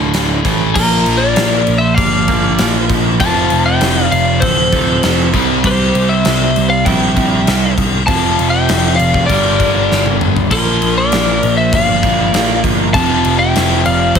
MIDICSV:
0, 0, Header, 1, 6, 480
1, 0, Start_track
1, 0, Tempo, 609137
1, 597, Time_signature, 4, 2, 24, 8
1, 11183, End_track
2, 0, Start_track
2, 0, Title_t, "Lead electric guitar"
2, 0, Program_c, 0, 29
2, 595, Note_on_c, 0, 70, 88
2, 926, Note_on_c, 0, 74, 84
2, 969, Note_off_c, 0, 70, 0
2, 1405, Note_on_c, 0, 76, 106
2, 1439, Note_off_c, 0, 74, 0
2, 1532, Note_off_c, 0, 76, 0
2, 1532, Note_on_c, 0, 77, 96
2, 2268, Note_off_c, 0, 77, 0
2, 2527, Note_on_c, 0, 81, 112
2, 2861, Note_off_c, 0, 81, 0
2, 2882, Note_on_c, 0, 79, 101
2, 3243, Note_on_c, 0, 77, 89
2, 3254, Note_off_c, 0, 79, 0
2, 3470, Note_on_c, 0, 72, 83
2, 3492, Note_off_c, 0, 77, 0
2, 4167, Note_off_c, 0, 72, 0
2, 4467, Note_on_c, 0, 72, 90
2, 4799, Note_on_c, 0, 76, 87
2, 4828, Note_off_c, 0, 72, 0
2, 5274, Note_off_c, 0, 76, 0
2, 5277, Note_on_c, 0, 77, 97
2, 5399, Note_on_c, 0, 79, 103
2, 5406, Note_off_c, 0, 77, 0
2, 6092, Note_off_c, 0, 79, 0
2, 6357, Note_on_c, 0, 81, 112
2, 6695, Note_off_c, 0, 81, 0
2, 6698, Note_on_c, 0, 79, 106
2, 7059, Note_on_c, 0, 77, 89
2, 7085, Note_off_c, 0, 79, 0
2, 7296, Note_off_c, 0, 77, 0
2, 7300, Note_on_c, 0, 74, 75
2, 8002, Note_off_c, 0, 74, 0
2, 8291, Note_on_c, 0, 70, 83
2, 8623, Note_off_c, 0, 70, 0
2, 8650, Note_on_c, 0, 74, 94
2, 9117, Note_off_c, 0, 74, 0
2, 9120, Note_on_c, 0, 76, 100
2, 9246, Note_off_c, 0, 76, 0
2, 9259, Note_on_c, 0, 77, 97
2, 9938, Note_off_c, 0, 77, 0
2, 10197, Note_on_c, 0, 81, 108
2, 10547, Note_off_c, 0, 81, 0
2, 10551, Note_on_c, 0, 79, 101
2, 10919, Note_on_c, 0, 77, 86
2, 10926, Note_off_c, 0, 79, 0
2, 11142, Note_off_c, 0, 77, 0
2, 11183, End_track
3, 0, Start_track
3, 0, Title_t, "Lead electric guitar"
3, 0, Program_c, 1, 29
3, 590, Note_on_c, 1, 65, 77
3, 930, Note_off_c, 1, 65, 0
3, 942, Note_on_c, 1, 70, 85
3, 1400, Note_off_c, 1, 70, 0
3, 1424, Note_on_c, 1, 72, 84
3, 1539, Note_off_c, 1, 72, 0
3, 1539, Note_on_c, 1, 74, 89
3, 2272, Note_off_c, 1, 74, 0
3, 2534, Note_on_c, 1, 77, 94
3, 2864, Note_off_c, 1, 77, 0
3, 2894, Note_on_c, 1, 76, 90
3, 3225, Note_off_c, 1, 76, 0
3, 3234, Note_on_c, 1, 74, 76
3, 3463, Note_off_c, 1, 74, 0
3, 3487, Note_on_c, 1, 69, 73
3, 4176, Note_off_c, 1, 69, 0
3, 4462, Note_on_c, 1, 67, 76
3, 4790, Note_off_c, 1, 67, 0
3, 4836, Note_on_c, 1, 72, 87
3, 5271, Note_off_c, 1, 72, 0
3, 5297, Note_on_c, 1, 74, 91
3, 5404, Note_off_c, 1, 74, 0
3, 5423, Note_on_c, 1, 76, 92
3, 6105, Note_off_c, 1, 76, 0
3, 6368, Note_on_c, 1, 77, 91
3, 6703, Note_off_c, 1, 77, 0
3, 6729, Note_on_c, 1, 76, 84
3, 7063, Note_off_c, 1, 76, 0
3, 7081, Note_on_c, 1, 74, 74
3, 7308, Note_off_c, 1, 74, 0
3, 7324, Note_on_c, 1, 70, 65
3, 8014, Note_off_c, 1, 70, 0
3, 8291, Note_on_c, 1, 65, 71
3, 8624, Note_off_c, 1, 65, 0
3, 8665, Note_on_c, 1, 70, 76
3, 9103, Note_off_c, 1, 70, 0
3, 9144, Note_on_c, 1, 72, 85
3, 9247, Note_off_c, 1, 72, 0
3, 9270, Note_on_c, 1, 74, 85
3, 9944, Note_off_c, 1, 74, 0
3, 10196, Note_on_c, 1, 77, 98
3, 10533, Note_off_c, 1, 77, 0
3, 10552, Note_on_c, 1, 76, 91
3, 10890, Note_off_c, 1, 76, 0
3, 10919, Note_on_c, 1, 74, 78
3, 11142, Note_off_c, 1, 74, 0
3, 11153, Note_on_c, 1, 69, 74
3, 11183, Note_off_c, 1, 69, 0
3, 11183, End_track
4, 0, Start_track
4, 0, Title_t, "Overdriven electric guitar"
4, 0, Program_c, 2, 29
4, 0, Note_on_c, 2, 38, 76
4, 0, Note_on_c, 2, 45, 76
4, 0, Note_on_c, 2, 50, 84
4, 333, Note_off_c, 2, 45, 0
4, 339, Note_off_c, 2, 38, 0
4, 342, Note_on_c, 2, 45, 85
4, 347, Note_off_c, 2, 50, 0
4, 349, Note_on_c, 2, 52, 86
4, 351, Note_on_c, 2, 57, 97
4, 583, Note_off_c, 2, 45, 0
4, 586, Note_off_c, 2, 52, 0
4, 587, Note_off_c, 2, 57, 0
4, 589, Note_on_c, 2, 46, 97
4, 607, Note_on_c, 2, 53, 100
4, 625, Note_on_c, 2, 58, 112
4, 1783, Note_off_c, 2, 46, 0
4, 1791, Note_off_c, 2, 58, 0
4, 1792, Note_off_c, 2, 53, 0
4, 1801, Note_on_c, 2, 58, 84
4, 1816, Note_on_c, 2, 53, 72
4, 1828, Note_on_c, 2, 46, 62
4, 2023, Note_off_c, 2, 46, 0
4, 2027, Note_off_c, 2, 58, 0
4, 2033, Note_on_c, 2, 46, 83
4, 2035, Note_off_c, 2, 53, 0
4, 2055, Note_on_c, 2, 53, 89
4, 2062, Note_on_c, 2, 58, 82
4, 2504, Note_off_c, 2, 46, 0
4, 2515, Note_off_c, 2, 53, 0
4, 2519, Note_off_c, 2, 58, 0
4, 2525, Note_on_c, 2, 41, 92
4, 2539, Note_on_c, 2, 48, 98
4, 2555, Note_on_c, 2, 53, 110
4, 3712, Note_off_c, 2, 41, 0
4, 3712, Note_off_c, 2, 53, 0
4, 3719, Note_off_c, 2, 48, 0
4, 3722, Note_on_c, 2, 53, 88
4, 3739, Note_on_c, 2, 48, 80
4, 3755, Note_on_c, 2, 41, 70
4, 3950, Note_off_c, 2, 53, 0
4, 3958, Note_off_c, 2, 48, 0
4, 3961, Note_off_c, 2, 41, 0
4, 3971, Note_on_c, 2, 41, 83
4, 3986, Note_on_c, 2, 48, 83
4, 4000, Note_on_c, 2, 53, 95
4, 4188, Note_off_c, 2, 48, 0
4, 4194, Note_off_c, 2, 41, 0
4, 4197, Note_on_c, 2, 48, 95
4, 4209, Note_off_c, 2, 53, 0
4, 4214, Note_on_c, 2, 55, 95
4, 4232, Note_on_c, 2, 60, 94
4, 5387, Note_off_c, 2, 48, 0
4, 5396, Note_on_c, 2, 48, 79
4, 5397, Note_off_c, 2, 55, 0
4, 5406, Note_off_c, 2, 60, 0
4, 5415, Note_on_c, 2, 55, 81
4, 5422, Note_on_c, 2, 60, 87
4, 5628, Note_off_c, 2, 48, 0
4, 5636, Note_off_c, 2, 60, 0
4, 5637, Note_off_c, 2, 55, 0
4, 5645, Note_on_c, 2, 60, 78
4, 5656, Note_on_c, 2, 55, 81
4, 5673, Note_on_c, 2, 48, 71
4, 6113, Note_off_c, 2, 60, 0
4, 6118, Note_off_c, 2, 55, 0
4, 6127, Note_off_c, 2, 48, 0
4, 6354, Note_on_c, 2, 41, 97
4, 6376, Note_on_c, 2, 48, 99
4, 6388, Note_on_c, 2, 53, 101
4, 7307, Note_off_c, 2, 41, 0
4, 7317, Note_on_c, 2, 43, 86
4, 7318, Note_off_c, 2, 48, 0
4, 7324, Note_off_c, 2, 53, 0
4, 7337, Note_on_c, 2, 50, 85
4, 7344, Note_on_c, 2, 55, 92
4, 8267, Note_off_c, 2, 43, 0
4, 8277, Note_off_c, 2, 50, 0
4, 8281, Note_off_c, 2, 55, 0
4, 8281, Note_on_c, 2, 46, 98
4, 8295, Note_on_c, 2, 53, 109
4, 8309, Note_on_c, 2, 58, 104
4, 9467, Note_off_c, 2, 46, 0
4, 9468, Note_off_c, 2, 58, 0
4, 9474, Note_off_c, 2, 53, 0
4, 9477, Note_on_c, 2, 58, 77
4, 9496, Note_on_c, 2, 53, 68
4, 9503, Note_on_c, 2, 46, 68
4, 9702, Note_off_c, 2, 46, 0
4, 9706, Note_off_c, 2, 58, 0
4, 9711, Note_on_c, 2, 46, 80
4, 9715, Note_off_c, 2, 53, 0
4, 9726, Note_on_c, 2, 53, 89
4, 9741, Note_on_c, 2, 58, 94
4, 10182, Note_off_c, 2, 46, 0
4, 10189, Note_off_c, 2, 53, 0
4, 10195, Note_on_c, 2, 41, 95
4, 10197, Note_off_c, 2, 58, 0
4, 10210, Note_on_c, 2, 48, 96
4, 10219, Note_on_c, 2, 53, 101
4, 11183, Note_off_c, 2, 41, 0
4, 11183, Note_off_c, 2, 48, 0
4, 11183, Note_off_c, 2, 53, 0
4, 11183, End_track
5, 0, Start_track
5, 0, Title_t, "Picked electric bass"
5, 0, Program_c, 3, 34
5, 0, Note_on_c, 3, 26, 85
5, 326, Note_off_c, 3, 26, 0
5, 359, Note_on_c, 3, 33, 80
5, 582, Note_off_c, 3, 33, 0
5, 599, Note_on_c, 3, 34, 92
5, 827, Note_off_c, 3, 34, 0
5, 843, Note_on_c, 3, 34, 83
5, 1070, Note_off_c, 3, 34, 0
5, 1081, Note_on_c, 3, 34, 91
5, 1309, Note_off_c, 3, 34, 0
5, 1323, Note_on_c, 3, 34, 91
5, 1551, Note_off_c, 3, 34, 0
5, 1557, Note_on_c, 3, 31, 98
5, 2017, Note_off_c, 3, 31, 0
5, 2049, Note_on_c, 3, 34, 87
5, 2275, Note_off_c, 3, 34, 0
5, 2282, Note_on_c, 3, 34, 86
5, 2511, Note_off_c, 3, 34, 0
5, 2525, Note_on_c, 3, 29, 92
5, 2753, Note_off_c, 3, 29, 0
5, 2771, Note_on_c, 3, 29, 87
5, 2996, Note_off_c, 3, 29, 0
5, 3004, Note_on_c, 3, 29, 93
5, 3233, Note_off_c, 3, 29, 0
5, 3247, Note_on_c, 3, 29, 89
5, 3475, Note_off_c, 3, 29, 0
5, 3489, Note_on_c, 3, 26, 98
5, 3945, Note_off_c, 3, 26, 0
5, 3969, Note_on_c, 3, 29, 91
5, 4196, Note_off_c, 3, 29, 0
5, 4206, Note_on_c, 3, 36, 95
5, 4435, Note_off_c, 3, 36, 0
5, 4448, Note_on_c, 3, 36, 94
5, 4676, Note_off_c, 3, 36, 0
5, 4685, Note_on_c, 3, 36, 90
5, 4915, Note_off_c, 3, 36, 0
5, 4933, Note_on_c, 3, 36, 96
5, 5159, Note_off_c, 3, 36, 0
5, 5179, Note_on_c, 3, 36, 96
5, 5402, Note_off_c, 3, 36, 0
5, 5409, Note_on_c, 3, 34, 98
5, 5866, Note_off_c, 3, 34, 0
5, 5893, Note_on_c, 3, 36, 97
5, 6119, Note_off_c, 3, 36, 0
5, 6133, Note_on_c, 3, 36, 91
5, 6359, Note_off_c, 3, 36, 0
5, 6369, Note_on_c, 3, 29, 94
5, 6597, Note_off_c, 3, 29, 0
5, 6615, Note_on_c, 3, 29, 86
5, 6840, Note_off_c, 3, 29, 0
5, 6858, Note_on_c, 3, 29, 94
5, 7082, Note_off_c, 3, 29, 0
5, 7091, Note_on_c, 3, 29, 88
5, 7318, Note_off_c, 3, 29, 0
5, 7327, Note_on_c, 3, 31, 94
5, 7784, Note_off_c, 3, 31, 0
5, 7815, Note_on_c, 3, 31, 84
5, 8040, Note_off_c, 3, 31, 0
5, 8049, Note_on_c, 3, 31, 83
5, 8276, Note_off_c, 3, 31, 0
5, 8283, Note_on_c, 3, 34, 100
5, 8513, Note_off_c, 3, 34, 0
5, 8527, Note_on_c, 3, 34, 93
5, 8755, Note_off_c, 3, 34, 0
5, 8769, Note_on_c, 3, 34, 93
5, 8996, Note_off_c, 3, 34, 0
5, 9010, Note_on_c, 3, 34, 90
5, 9236, Note_off_c, 3, 34, 0
5, 9243, Note_on_c, 3, 31, 91
5, 9700, Note_off_c, 3, 31, 0
5, 9734, Note_on_c, 3, 34, 81
5, 9957, Note_off_c, 3, 34, 0
5, 9963, Note_on_c, 3, 31, 91
5, 10191, Note_off_c, 3, 31, 0
5, 10203, Note_on_c, 3, 29, 105
5, 10431, Note_off_c, 3, 29, 0
5, 10442, Note_on_c, 3, 29, 89
5, 10670, Note_off_c, 3, 29, 0
5, 10688, Note_on_c, 3, 29, 93
5, 10912, Note_off_c, 3, 29, 0
5, 10926, Note_on_c, 3, 29, 92
5, 11151, Note_off_c, 3, 29, 0
5, 11156, Note_on_c, 3, 26, 91
5, 11183, Note_off_c, 3, 26, 0
5, 11183, End_track
6, 0, Start_track
6, 0, Title_t, "Drums"
6, 108, Note_on_c, 9, 42, 90
6, 115, Note_on_c, 9, 38, 108
6, 187, Note_off_c, 9, 42, 0
6, 194, Note_off_c, 9, 38, 0
6, 353, Note_on_c, 9, 36, 99
6, 354, Note_on_c, 9, 42, 61
6, 432, Note_off_c, 9, 36, 0
6, 433, Note_off_c, 9, 42, 0
6, 595, Note_on_c, 9, 36, 117
6, 595, Note_on_c, 9, 49, 120
6, 595, Note_on_c, 9, 57, 79
6, 674, Note_off_c, 9, 36, 0
6, 674, Note_off_c, 9, 49, 0
6, 674, Note_off_c, 9, 57, 0
6, 834, Note_on_c, 9, 57, 64
6, 913, Note_off_c, 9, 57, 0
6, 1072, Note_on_c, 9, 57, 77
6, 1079, Note_on_c, 9, 38, 118
6, 1151, Note_off_c, 9, 57, 0
6, 1158, Note_off_c, 9, 38, 0
6, 1313, Note_on_c, 9, 57, 55
6, 1392, Note_off_c, 9, 57, 0
6, 1557, Note_on_c, 9, 57, 83
6, 1558, Note_on_c, 9, 36, 125
6, 1636, Note_off_c, 9, 57, 0
6, 1637, Note_off_c, 9, 36, 0
6, 1794, Note_on_c, 9, 57, 57
6, 1798, Note_on_c, 9, 36, 79
6, 1873, Note_off_c, 9, 57, 0
6, 1877, Note_off_c, 9, 36, 0
6, 2036, Note_on_c, 9, 57, 87
6, 2043, Note_on_c, 9, 38, 110
6, 2115, Note_off_c, 9, 57, 0
6, 2122, Note_off_c, 9, 38, 0
6, 2281, Note_on_c, 9, 57, 58
6, 2282, Note_on_c, 9, 36, 82
6, 2360, Note_off_c, 9, 36, 0
6, 2360, Note_off_c, 9, 57, 0
6, 2522, Note_on_c, 9, 57, 84
6, 2523, Note_on_c, 9, 36, 114
6, 2601, Note_off_c, 9, 57, 0
6, 2602, Note_off_c, 9, 36, 0
6, 2758, Note_on_c, 9, 57, 60
6, 2837, Note_off_c, 9, 57, 0
6, 3000, Note_on_c, 9, 57, 91
6, 3007, Note_on_c, 9, 38, 114
6, 3079, Note_off_c, 9, 57, 0
6, 3086, Note_off_c, 9, 38, 0
6, 3247, Note_on_c, 9, 57, 61
6, 3326, Note_off_c, 9, 57, 0
6, 3481, Note_on_c, 9, 57, 99
6, 3484, Note_on_c, 9, 36, 114
6, 3560, Note_off_c, 9, 57, 0
6, 3563, Note_off_c, 9, 36, 0
6, 3722, Note_on_c, 9, 57, 59
6, 3723, Note_on_c, 9, 36, 81
6, 3801, Note_off_c, 9, 57, 0
6, 3802, Note_off_c, 9, 36, 0
6, 3962, Note_on_c, 9, 57, 86
6, 3969, Note_on_c, 9, 38, 110
6, 4041, Note_off_c, 9, 57, 0
6, 4048, Note_off_c, 9, 38, 0
6, 4203, Note_on_c, 9, 57, 62
6, 4205, Note_on_c, 9, 36, 77
6, 4282, Note_off_c, 9, 57, 0
6, 4284, Note_off_c, 9, 36, 0
6, 4445, Note_on_c, 9, 36, 122
6, 4446, Note_on_c, 9, 57, 89
6, 4524, Note_off_c, 9, 36, 0
6, 4525, Note_off_c, 9, 57, 0
6, 4688, Note_on_c, 9, 57, 65
6, 4767, Note_off_c, 9, 57, 0
6, 4923, Note_on_c, 9, 57, 82
6, 4930, Note_on_c, 9, 38, 118
6, 5002, Note_off_c, 9, 57, 0
6, 5009, Note_off_c, 9, 38, 0
6, 5168, Note_on_c, 9, 57, 56
6, 5247, Note_off_c, 9, 57, 0
6, 5407, Note_on_c, 9, 36, 125
6, 5408, Note_on_c, 9, 57, 84
6, 5486, Note_off_c, 9, 36, 0
6, 5487, Note_off_c, 9, 57, 0
6, 5646, Note_on_c, 9, 57, 51
6, 5648, Note_on_c, 9, 36, 85
6, 5724, Note_off_c, 9, 57, 0
6, 5726, Note_off_c, 9, 36, 0
6, 5887, Note_on_c, 9, 57, 82
6, 5894, Note_on_c, 9, 38, 104
6, 5966, Note_off_c, 9, 57, 0
6, 5973, Note_off_c, 9, 38, 0
6, 6128, Note_on_c, 9, 36, 76
6, 6129, Note_on_c, 9, 57, 64
6, 6207, Note_off_c, 9, 36, 0
6, 6208, Note_off_c, 9, 57, 0
6, 6366, Note_on_c, 9, 57, 86
6, 6367, Note_on_c, 9, 36, 119
6, 6445, Note_off_c, 9, 57, 0
6, 6446, Note_off_c, 9, 36, 0
6, 6610, Note_on_c, 9, 57, 67
6, 6689, Note_off_c, 9, 57, 0
6, 6846, Note_on_c, 9, 57, 97
6, 6853, Note_on_c, 9, 38, 117
6, 6924, Note_off_c, 9, 57, 0
6, 6931, Note_off_c, 9, 38, 0
6, 7087, Note_on_c, 9, 57, 58
6, 7166, Note_off_c, 9, 57, 0
6, 7205, Note_on_c, 9, 36, 84
6, 7284, Note_off_c, 9, 36, 0
6, 7324, Note_on_c, 9, 36, 107
6, 7325, Note_on_c, 9, 57, 89
6, 7403, Note_off_c, 9, 36, 0
6, 7403, Note_off_c, 9, 57, 0
6, 7564, Note_on_c, 9, 36, 87
6, 7564, Note_on_c, 9, 57, 61
6, 7642, Note_off_c, 9, 36, 0
6, 7643, Note_off_c, 9, 57, 0
6, 7813, Note_on_c, 9, 38, 64
6, 7892, Note_off_c, 9, 38, 0
6, 7927, Note_on_c, 9, 48, 73
6, 8006, Note_off_c, 9, 48, 0
6, 8047, Note_on_c, 9, 45, 96
6, 8126, Note_off_c, 9, 45, 0
6, 8167, Note_on_c, 9, 43, 100
6, 8246, Note_off_c, 9, 43, 0
6, 8283, Note_on_c, 9, 36, 116
6, 8283, Note_on_c, 9, 55, 92
6, 8283, Note_on_c, 9, 57, 88
6, 8362, Note_off_c, 9, 36, 0
6, 8362, Note_off_c, 9, 55, 0
6, 8362, Note_off_c, 9, 57, 0
6, 8524, Note_on_c, 9, 57, 62
6, 8603, Note_off_c, 9, 57, 0
6, 8762, Note_on_c, 9, 57, 81
6, 8769, Note_on_c, 9, 38, 118
6, 8840, Note_off_c, 9, 57, 0
6, 8848, Note_off_c, 9, 38, 0
6, 9005, Note_on_c, 9, 57, 61
6, 9084, Note_off_c, 9, 57, 0
6, 9242, Note_on_c, 9, 36, 120
6, 9246, Note_on_c, 9, 57, 85
6, 9321, Note_off_c, 9, 36, 0
6, 9325, Note_off_c, 9, 57, 0
6, 9481, Note_on_c, 9, 36, 86
6, 9484, Note_on_c, 9, 57, 56
6, 9560, Note_off_c, 9, 36, 0
6, 9562, Note_off_c, 9, 57, 0
6, 9723, Note_on_c, 9, 57, 78
6, 9730, Note_on_c, 9, 38, 114
6, 9802, Note_off_c, 9, 57, 0
6, 9809, Note_off_c, 9, 38, 0
6, 9960, Note_on_c, 9, 36, 86
6, 9961, Note_on_c, 9, 57, 59
6, 10038, Note_off_c, 9, 36, 0
6, 10040, Note_off_c, 9, 57, 0
6, 10198, Note_on_c, 9, 36, 112
6, 10202, Note_on_c, 9, 57, 75
6, 10277, Note_off_c, 9, 36, 0
6, 10281, Note_off_c, 9, 57, 0
6, 10437, Note_on_c, 9, 57, 67
6, 10516, Note_off_c, 9, 57, 0
6, 10682, Note_on_c, 9, 57, 85
6, 10689, Note_on_c, 9, 38, 107
6, 10761, Note_off_c, 9, 57, 0
6, 10768, Note_off_c, 9, 38, 0
6, 10918, Note_on_c, 9, 57, 63
6, 10996, Note_off_c, 9, 57, 0
6, 11153, Note_on_c, 9, 57, 95
6, 11154, Note_on_c, 9, 36, 118
6, 11183, Note_off_c, 9, 36, 0
6, 11183, Note_off_c, 9, 57, 0
6, 11183, End_track
0, 0, End_of_file